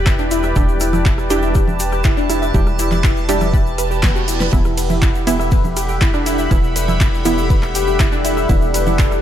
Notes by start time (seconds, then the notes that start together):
Already playing: E1 G3 D4 G4 B4 D5 B5
0.06 E4 E5, kick, cross-stick, clap, shaker
0.19 D4 D5, shaker
0.31 E4 E5, open hi-hat, shaker
0.43 E5 E6, cross-stick, shaker
0.56 E1 G3 D4 E4 G4 E5 A5, kick, shaker
0.69 shaker
0.80 E4 E5, cross-stick, open hi-hat, shaker
0.93 E4 E5, low conga, shaker
1.06 E4 E5, kick, clap, shaker
1.18 cross-stick, shaker
1.30 G3 D4 E4 G4 E5, open hi-hat, shaker
1.42 E5 E6, shaker
1.55 B4 B5, kick, cross-stick, shaker
1.68 low conga, shaker
1.80 G4 G5, open hi-hat, shaker
1.92 G4 G5, cross-stick, shaker
2.04 E4 E5, kick, clap, shaker
2.17 D4 D5, shaker
2.30 E4 E5, cross-stick, open hi-hat, shaker
2.42 E5 E6, shaker
2.54 E1 G3 D4 E4 G4 E5, kick, shaker
2.67 cross-stick, shaker
2.79 E4 E5, open hi-hat, shaker
2.92 E4 E5, clap, low conga, shaker
3.04 E4 E5, kick, cross-stick, clap, shaker
3.17 shaker
3.29 G3 D4 E4 G4 E5, open hi-hat, shaker
3.41 E5 E6, cross-stick, low conga, shaker
3.54 B4 B5, kick, reverse cymbal, shaker
3.66 shaker
3.78 B4 B5, cross-stick, open hi-hat, shaker
3.91 G4 G5, shaker
4.03 B3 B4, kick, snare, clap, shaker
4.16 F#4 F#5, shaker
4.28 E4 E5, open hi-hat, shaker
4.40 B4 B5, snare, shaker
4.53 E1 E3 B3 E4 G4 A4 E5 F#5 B5, kick, ride, shaker
4.64 cross-stick, shaker
4.77 B4 D5 B5, open hi-hat, ride, shaker
4.87 E4 E5 B5, low conga, shaker
5.02 E4 G4 E5, kick, cross-stick, clap, ride, shaker
5.15 shaker
5.27 E3 B3 E4 E5, open hi-hat, ride, shaker
5.39 E5 E6, cross-stick, shaker
5.51 B4 B5, kick, ride, shaker
5.64 low conga, shaker
5.77 G4 G5, cross-stick, open hi-hat, ride, shaker
5.88 G4 G5, shaker
6.01 E4 E5, kick, clap, ride, shaker
6.14 D4 D5, cross-stick, shaker
6.26 E4 E5, open hi-hat, ride, shaker
6.38 E5 E6, shaker
6.51 E1 E3 B3 E4 E5, kick, cross-stick, ride, shaker
6.63 shaker
6.76 B4 B5, open hi-hat, ride, shaker
6.88 E4 E5, cross-stick, low conga, shaker
7.01 E4 E5, kick, clap, ride, shaker
7.14 shaker
7.25 E3 B3 E4 E5, cross-stick, open hi-hat, ride, shaker
7.38 E5 E6, shaker
7.50 B4 B5, kick, ride, shaker
7.63 cross-stick, clap, shaker
7.75 G4 G5, open hi-hat, ride, shaker
7.87 G4 G5, shaker
7.99 E4 E5, kick, cross-stick, clap, ride, shaker
8.12 D4 D5, shaker
8.25 E4 E5, open hi-hat, ride, shaker
8.37 E5 E6, cross-stick, shaker
8.49 E1 E3 B3 E4 E5 A5, kick, ride, shaker
8.62 shaker
8.74 B4 B5, cross-stick, open hi-hat, ride, shaker
8.86 E4 E5, low conga, shaker
8.99 E4 E5, kick, clap, ride, shaker
9.11 cross-stick, shaker